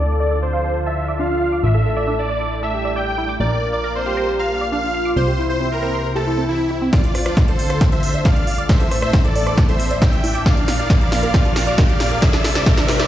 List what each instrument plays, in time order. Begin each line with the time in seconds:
Already playing: analog synth bass D2, analog synth pad D3 D4 F4 A4, soft synth lead A4, supersaw synth D5
0.20 synth arpeggio sound D5, supersaw synth D5
0.31 synth arpeggio sound A4
0.42 supersaw synth C5
0.53 soft synth lead F4, synth arpeggio sound F5
0.64 synth arpeggio sound A4
0.86 supersaw synth E5, synth arpeggio sound A5
1.08 synth arpeggio sound D5
1.19 synth arpeggio sound D4, soft synth lead F4, supersaw synth F5
1.41 synth arpeggio sound F5
1.52 synth arpeggio sound D6
1.63 analog synth bass A1, analog synth pad A3 E4, supersaw synth E5
1.75 synth arpeggio sound A4
1.86 soft synth lead A4
1.97 synth arpeggio sound D5, supersaw synth E5
2.08 synth arpeggio sound D4
2.19 supersaw synth D5
2.30 synth arpeggio sound D5
2.41 synth arpeggio sound D6
2.63 synth arpeggio sound A4, supersaw synth E5
2.74 soft synth lead G4
2.85 synth arpeggio sound D5
2.96 synth arpeggio sound D5, supersaw synth G5
3.18 synth arpeggio sound E4
3.29 synth arpeggio sound D6
3.40 analog synth bass A#1, analog synth pad A#3 F4, soft synth lead A#4, supersaw synth D5
3.51 synth arpeggio sound D4
3.73 synth arpeggio sound D5, supersaw synth D5
3.84 synth arpeggio sound A#4
3.95 supersaw synth C5
4.06 soft synth lead G4, synth arpeggio sound F5
4.17 synth arpeggio sound A#4
4.39 supersaw synth F5, synth arpeggio sound A#5
4.61 synth arpeggio sound D5
4.72 synth arpeggio sound D4, soft synth lead F4, supersaw synth F5
4.94 synth arpeggio sound F5
5.05 synth arpeggio sound D6
5.16 analog synth bass C2, analog synth pad C3 C4 E4 G4, supersaw synth C5
5.27 synth arpeggio sound G4
5.38 soft synth lead E4
5.49 supersaw synth C5, synth arpeggio sound C5
5.61 synth arpeggio sound C4
5.72 supersaw synth A#4
5.83 synth arpeggio sound C5
5.94 synth arpeggio sound C6
6.16 synth arpeggio sound G4, supersaw synth A4
6.27 soft synth lead E4
6.38 synth arpeggio sound C4
6.49 supersaw synth E4, synth arpeggio sound E4
6.71 synth arpeggio sound E4
6.82 synth arpeggio sound C4
6.93 analog synth pad D2 D3 F4 A4, supersaw synth F4 D5, kick, snare, closed hi-hat, riser
7.04 synth arpeggio sound D4, closed hi-hat
7.15 cross-stick, open hi-hat
7.26 supersaw synth F4 D5, synth arpeggio sound D5, cross-stick, closed hi-hat
7.37 kick, snare, closed hi-hat
7.48 supersaw synth A4 C5, closed hi-hat
7.59 synth arpeggio sound F5, open hi-hat
7.70 synth arpeggio sound A4, cross-stick, closed hi-hat
7.81 kick, snare, closed hi-hat
7.92 supersaw synth C5 E5, synth arpeggio sound A5, closed hi-hat
8.03 open hi-hat
8.14 synth arpeggio sound D5, closed hi-hat
8.25 synth arpeggio sound D4, supersaw synth D5 F5, kick, snare, closed hi-hat
8.36 closed hi-hat
8.47 synth arpeggio sound F5, open hi-hat
8.58 synth arpeggio sound D6, closed hi-hat
8.69 analog synth pad A2 E3 D4, supersaw synth C5 E5, kick, snare, closed hi-hat
8.80 synth arpeggio sound A4, closed hi-hat
8.91 cross-stick, open hi-hat
9.02 supersaw synth C5 E5, synth arpeggio sound D5, cross-stick, closed hi-hat
9.13 synth arpeggio sound D4, kick, snare, closed hi-hat
9.24 supersaw synth A4 D5, closed hi-hat
9.36 synth arpeggio sound D5, open hi-hat
9.47 synth arpeggio sound D6, cross-stick, closed hi-hat
9.58 kick, snare, closed hi-hat
9.68 synth arpeggio sound A4, supersaw synth C5 E5, closed hi-hat
9.80 open hi-hat
9.91 synth arpeggio sound D5, closed hi-hat
10.02 synth arpeggio sound D5, supersaw synth E5 G5, kick, snare, closed hi-hat
10.13 closed hi-hat
10.24 synth arpeggio sound E4, open hi-hat
10.35 synth arpeggio sound D6, closed hi-hat
10.46 analog synth pad A#2 F3 A#4, supersaw synth D5 F5, kick, snare, closed hi-hat
10.57 synth arpeggio sound D4, closed hi-hat
10.68 snare, open hi-hat
10.79 synth arpeggio sound D5, supersaw synth D5 F5, closed hi-hat
10.90 synth arpeggio sound A#4, kick, snare, closed hi-hat
11.01 supersaw synth D5 F5, closed hi-hat
11.12 synth arpeggio sound F5, snare, open hi-hat
11.23 synth arpeggio sound A#4, closed hi-hat
11.34 supersaw synth D5 F5, kick, snare, closed hi-hat
11.45 synth arpeggio sound D4, closed hi-hat
11.56 snare, open hi-hat
11.67 synth arpeggio sound D5, supersaw synth D5 F5, closed hi-hat
11.78 synth arpeggio sound A#4, kick, snare, closed hi-hat
11.89 supersaw synth D5 F5, closed hi-hat
12.00 synth arpeggio sound F5, snare, open hi-hat
12.11 synth arpeggio sound A#4, closed hi-hat
12.22 analog synth pad C3 G3 E4 C5, supersaw synth D5 E5, kick, snare, closed hi-hat
12.33 synth arpeggio sound D4, snare, closed hi-hat
12.44 snare, open hi-hat
12.55 supersaw synth D5 E5, synth arpeggio sound D5, snare
12.66 supersaw synth D5 E5, kick, snare, closed hi-hat
12.77 synth arpeggio sound D4, snare, closed hi-hat
12.88 snare, open hi-hat
12.99 supersaw synth D5 E5, synth arpeggio sound D5, snare